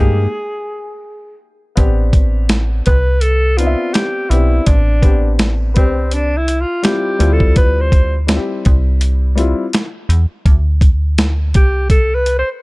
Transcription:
Already playing: upright piano G#3 A#3 D#4, alto saxophone G#4
0.00 fm bass G2, upright piano G4
1.76 fm bass A1, upright piano B3 C4 D4 G4, kick, closed hi-hat
2.13 kick, closed hi-hat
2.49 snare, closed hi-hat
2.86 fm bass C2, alto saxophone B4, kick, closed hi-hat
3.21 alto saxophone A4, closed hi-hat
3.57 upright piano B3 C4 D4 D#4, alto saxophone F4, closed hi-hat
3.67 upright piano E5
3.93 alto saxophone G4, snare, closed hi-hat
4.29 fm bass B1, upright piano B3 C4 D4 G4, alto saxophone E4, closed hi-hat
4.66 fm bass A1, alto saxophone D4, kick, closed hi-hat
5.02 upright piano B3 C4 D4 G4, kick, closed hi-hat
5.39 snare, closed hi-hat
5.74 fm bass C2, upright piano C4 D4 G4 B4, alto saxophone C4, kick, closed hi-hat
6.11 alto saxophone D4, closed hi-hat
6.37 alto saxophone E4
6.48 closed hi-hat
6.61 alto saxophone F4
6.83 upright piano G3 C4 E4 F4, alto saxophone G4, snare, closed hi-hat
7.19 fm bass D2, upright piano G3 C4 E4 F4, closed hi-hat
7.33 alto saxophone A4
7.40 kick
7.56 alto saxophone B4, kick, closed hi-hat
7.81 alto saxophone C5
7.92 kick, closed hi-hat
8.27 upright piano G3 C4 E4 F4, snare, closed hi-hat
8.37 upright piano G4
8.65 fm bass C2, kick, closed hi-hat
9.01 closed hi-hat
9.35 upright piano G3 C4 E4 F4, closed hi-hat
9.73 snare, closed hi-hat
10.09 fm bass E2, closed hi-hat
10.46 fm bass D2, kick, closed hi-hat
10.81 kick, closed hi-hat
11.18 snare, closed hi-hat
11.54 fm bass C2, alto saxophone G4, kick, closed hi-hat
11.90 alto saxophone A4, kick, closed hi-hat
12.15 alto saxophone B4
12.26 closed hi-hat
12.39 alto saxophone C5

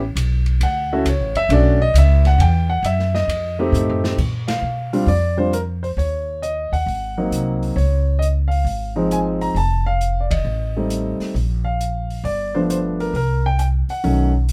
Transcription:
Already playing: upright bass A1
0.15 upright bass B1, hi-hat pedal, ride
0.46 ride
0.61 upright bass D2, grand piano F#5, ride
0.93 grand piano A3 C#4 E4 F#4 A4
1.05 upright bass C#2, grand piano C#5, hi-hat pedal, ride
1.20 upright bass A1
1.35 upright bass F#1, grand piano E5, ride
1.49 upright bass B1, grand piano A3 C#4 D4 F#4 D5, ride
1.82 grand piano D#5
1.94 upright bass C#2, hi-hat pedal, ride
1.98 grand piano E5
2.25 grand piano F#5, snare, ride
2.38 upright bass E2, grand piano G5, ride
2.70 grand piano F#5
2.83 upright bass F#2, grand piano E5, hi-hat pedal, ride
2.99 snare
3.14 grand piano D#5, snare
3.28 upright bass F2, ride
3.59 grand piano A3 C4 D#4 G4
3.72 upright bass A2, floor tom, hi-hat pedal
3.90 floor tom
4.04 snare
4.18 upright bass A#2, kick, crash
4.48 grand piano F5, snare, ride
4.62 upright bass B2
4.93 grand piano G3 C4 D4 F4, open hi-hat
5.06 upright bass F2, grand piano D5, open hi-hat
5.37 grand piano G3 C4 D4 F4 C5
5.53 grand piano A#4, closed hi-hat
5.83 grand piano C5, open hi-hat
5.97 upright bass D#2, grand piano C#5, open hi-hat
6.42 grand piano D#5, closed hi-hat
6.72 upright bass D#2, grand piano F#5, open hi-hat
6.86 upright bass G#1, open hi-hat
7.17 grand piano F#3 A#3 C4 D#4
7.31 upright bass C2, closed hi-hat
7.63 open hi-hat
7.76 upright bass C#2, grand piano C#5, open hi-hat
8.19 grand piano D#5, closed hi-hat
8.48 grand piano F5, open hi-hat
8.65 upright bass G#1, open hi-hat
8.96 grand piano F3 G#3 C4 D#4
9.11 grand piano G#5, closed hi-hat
9.41 grand piano A#5, open hi-hat
9.54 upright bass F1, grand piano A5, open hi-hat
9.86 grand piano F5
10.01 closed hi-hat
10.20 grand piano D5
10.31 grand piano D#5, kick, ride
10.45 upright bass A1
10.76 grand piano G3 A3 C4 D#4
10.90 closed hi-hat
11.20 muted upright bass stroke, snare, open hi-hat
11.34 upright bass A#1, open hi-hat
11.64 grand piano F5
11.81 closed hi-hat
12.10 open hi-hat
12.24 upright bass G1, grand piano D5, open hi-hat
12.55 grand piano F3 A3 B3 D4 C5
12.70 grand piano C5, closed hi-hat
13.00 grand piano A#4, open hi-hat
13.13 upright bass C2, grand piano A#4, open hi-hat
13.46 grand piano G5
13.59 grand piano G5, closed hi-hat
13.89 grand piano F#5, muted upright bass stroke, open hi-hat
14.04 upright bass B1, grand piano D#3 F#3 A3 C#4, open hi-hat
14.49 closed hi-hat

